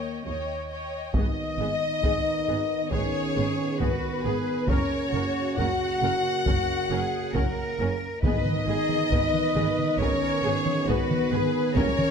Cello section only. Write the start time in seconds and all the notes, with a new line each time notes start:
Already playing: D#2
0.26 D#2
2.92 G#4
3.80 F#4
4.24 G#4
4.68 A#4
5.12 F#4
6.46 F#4
6.91 G#4
7.34 A#4
8.23 B4
8.68 G#4
9.11 B4
9.99 A#4
10.43 G#4
10.88 F#4
11.31 G#4
11.76 A#4